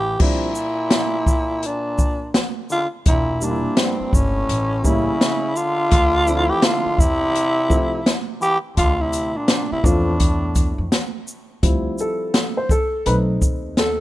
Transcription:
Already playing: upright bass A1, trombone E3, tenor saxophone G4
0.19 trombone A#2, upright piano F3 G3 C4 D4, tenor saxophone E4, kick, crash
0.55 shaker
0.90 snare, closed hi-hat
1.26 kick, shaker
1.63 trombone A#2, closed hi-hat
1.67 tenor saxophone D4
1.98 kick, shaker
2.34 snare, closed hi-hat
2.70 trombone D3, tenor saxophone F4, shaker
3.06 upright bass E1, trombone A#2, tenor saxophone E4, kick, closed hi-hat
3.41 trombone A#2, upright piano G3 A#3 D4 D#4, tenor saxophone D4, shaker
3.50 upright piano E4
3.77 trombone G2, tenor saxophone C4, snare, closed hi-hat
4.00 muted upright bass stroke
4.13 upright bass G1, trombone A2, tenor saxophone C#4, kick, shaker
4.49 upright bass A1, closed hi-hat
4.84 trombone C#3, upright piano G3 A#3 C#4 E4, tenor saxophone E4, kick, shaker
5.21 snare, closed hi-hat
5.55 trombone D3, tenor saxophone F4, shaker
5.91 upright bass D2, kick, closed hi-hat
6.27 upright piano F3 A3 C4 D4, shaker
6.36 upright piano E4
6.49 trombone E3, tenor saxophone G4
6.62 trombone D3, tenor saxophone F4, snare, closed hi-hat
6.86 muted upright bass stroke
6.98 upright bass E2, trombone C3, tenor saxophone E4, kick, shaker
7.35 closed hi-hat
7.69 upright piano F3 A3 C4 E4, kick, shaker
8.06 snare, closed hi-hat
8.41 trombone E3, tenor saxophone G4, shaker
8.76 upright bass D2, trombone D3, tenor saxophone F4, kick, closed hi-hat
8.98 trombone C3, tenor saxophone E4
9.13 closed hi-hat, shaker
9.36 trombone A#2, tenor saxophone D4
9.48 snare, closed hi-hat
9.71 trombone C3, tenor saxophone E4, muted upright bass stroke
9.83 upright bass E2, trombone A2, upright piano F3 A3 C4 F4, tenor saxophone D4, kick, shaker
10.20 kick, closed hi-hat
10.55 kick, closed hi-hat, shaker
10.78 upright bass F2
10.92 snare, closed hi-hat
11.28 shaker
11.63 upright bass D2, upright piano F3 G3 C4 E4, kick, closed hi-hat
11.98 upright piano A4, shaker
12.34 snare, closed hi-hat
12.57 upright piano C5
12.69 upright piano A4, kick, shaker
13.06 upright bass B1, upright piano A3 C4 D#4 B4, closed hi-hat
13.42 upright bass D#2, kick, shaker
13.77 upright piano A4, snare, closed hi-hat

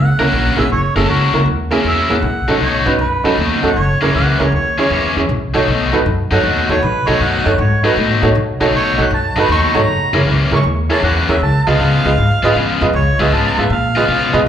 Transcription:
Already playing: upright bass C#2, harmonica F#5
0.19 upright bass C#2, overdriven electric guitar F#3 C#4 E4 A#4, upright piano A#3 C#4 E4 A#4
0.32 upright bass A#1, overdriven electric guitar F#3 C#4 E4 A#4
0.57 upright bass A#1, upright piano A#3 C#4 E4 G#4, harmonica E5
0.70 upright bass F#1, harmonica C#5
0.95 upright bass F#1, overdriven electric guitar F#3 C#4 E4 A#4, upright piano A#3 C#4 E4 G#4, harmonica A4
1.08 upright bass C#2, overdriven electric guitar F#3 C#4 E4 A#4, harmonica F#4
1.33 upright bass C#2, upright piano A#3 C#4 E4 A#4
1.46 upright bass D#2
1.71 overdriven electric guitar F#3 C#4 E4 A#4, upright piano A#3 C#4 E4 G#4
1.84 upright bass E2, overdriven electric guitar F#3 C#4 E4 A#4, harmonica E5
2.09 upright bass E2, upright piano A#3 C#4 E4 G#4, harmonica F#5
2.22 upright bass B1
2.48 upright bass B1, overdriven electric guitar B2 F#3 A3 D#4, upright piano C#4 D#4 F#4 A4
2.60 upright bass B1, overdriven electric guitar B2 F#3 A3 D#4, harmonica C#5
2.86 upright bass B1, upright piano C#4 D#4 F#4 B4, harmonica B4
2.99 upright bass F#2, harmonica B4
3.24 upright bass F#2, overdriven electric guitar B2 F#3 A3 D#4, upright piano C#4 D#4 F#4 A4
3.37 upright bass D#2, overdriven electric guitar B2 F#3 A3 D#4
3.62 upright bass D#2, upright piano C#4 D#4 F#4 A4, harmonica F#5
3.76 upright bass F#1, harmonica C#5
4.01 upright bass F#1, overdriven electric guitar F#2 E3 A#3 C#4, upright piano C#4 E4 G#4 A#4, harmonica C#5
4.14 upright bass C#2, overdriven electric guitar F#2 E3 A#3 C#4, harmonica F#5
4.39 upright bass C#2, upright piano C#4 E4 G#4 A#4, harmonica C#5
4.52 upright bass D#2, harmonica C#5
4.78 overdriven electric guitar F#2 E3 A#3 C#4, upright piano C#4 E4 G#4 C#5, harmonica C#5
4.90 upright bass E2, overdriven electric guitar F#2 E3 A#3 C#4
5.16 upright bass E2, upright piano C#4 E4 G#4 C#5
5.29 upright bass B1
5.54 upright bass B1, overdriven electric guitar B2 F#3 A3 D#4, upright piano D#4 F#4 A4 C#5
5.67 upright bass B1, overdriven electric guitar B2 F#3 A3 D#4
5.93 upright bass B1, upright piano D#4 F#4 A4 B4
6.06 upright bass F#2
6.31 upright bass F#2, overdriven electric guitar B2 F#3 A3 D#4, upright piano D#4 F#4 A4 C#5, harmonica F#5
6.43 upright bass D#2, overdriven electric guitar B2 F#3 A3 D#4
6.69 upright bass D#2, upright piano D#4 F#4 A4 C#5, harmonica C#5
6.82 upright bass B1, harmonica B4
7.07 upright bass B1, overdriven electric guitar B2 F#3 A3 D#4, upright piano D#4 F#4 A4 C#5, harmonica C#5
7.20 upright bass F#2, overdriven electric guitar B2 F#3 A3 D#4, harmonica F#5
7.45 upright bass F#2, upright piano D#4 F#4 A4 C#5
7.58 upright bass G#2, harmonica C#5
7.83 overdriven electric guitar B2 F#3 A3 D#4, upright piano D#4 F#4 A4 B4, harmonica F#4
7.96 upright bass A2, overdriven electric guitar B2 F#3 A3 D#4
8.22 upright bass A2, upright piano D#4 F#4 A4 C#5
8.35 upright bass B1
8.60 upright bass B1, overdriven electric guitar B2 F#3 A3 D#4, upright piano D#4 F#4 A4 C#5
8.73 upright bass B1, overdriven electric guitar B2 F#3 A3 D#4, harmonica C#5
8.98 upright bass B1, upright piano D#4 F#4 A4 C#5
9.02 harmonica F#5
9.10 upright bass F#2
9.14 harmonica A5
9.36 upright bass F#2, overdriven electric guitar B2 F#3 A3 D#4, upright piano D#4 F#4 A4 B4, harmonica B5
9.49 upright bass D#2, overdriven electric guitar B2 F#3 A3 D#4, harmonica C#6
9.74 upright bass G#1, upright piano D#4 F#4 A4 C#5, harmonica A#5
9.87 upright bass F#1
10.13 upright bass F#1, overdriven electric guitar F#2 E3 A#3 C#4, upright piano E4 G#4 A#4 C#5
10.25 upright bass C#2, overdriven electric guitar F#2 E3 A#3 C#4
10.51 upright bass C#2, upright piano E4 G#4 A#4 C#5
10.55 harmonica C#6
10.64 upright bass D#2
10.89 overdriven electric guitar F#2 E3 A#3 C#4, upright piano E4 G#4 A#4 C#5, harmonica A5
11.02 upright bass E2, overdriven electric guitar F#2 E3 A#3 C#4, harmonica F#5
11.29 upright bass D#2, upright piano E4 G#4 A#4 C#5, harmonica E5
11.41 upright bass C#2, harmonica A5
11.66 upright bass C#2, overdriven electric guitar C#3 G#3 B3 F4, upright piano F4 G#4 B4 D#5, harmonica F5
11.79 upright bass C#2, overdriven electric guitar C#3 G#3 B3 F4
12.05 upright bass C#2, upright piano F4 G#4 B4 D#5
12.18 upright bass G#2
12.43 upright bass G#2, overdriven electric guitar C#3 G#3 B3 F4, upright piano F4 G#4 B4 D#5
12.55 upright bass F2, overdriven electric guitar C#3 G#3 B3 F4
12.81 upright bass F2, upright piano F4 G#4 B4 D#5
12.93 upright bass C#2, harmonica C#5
13.19 upright bass C#2, overdriven electric guitar C#3 G#3 B3 F4, upright piano F4 G#4 B4 D#5, harmonica E5
13.32 upright bass G#2, overdriven electric guitar C#3 G#3 B3 F4, harmonica A5
13.58 upright bass G#2, upright piano F4 G#4 B4 F5, harmonica E5
13.70 upright bass A#2, harmonica F5
13.95 overdriven electric guitar C#3 G#3 B3 F4, upright piano F4 G#4 B4 D#5
14.08 upright bass B2, overdriven electric guitar C#3 G#3 B3 F4
14.33 upright bass B2, upright piano F4 G#4 B4 D#5

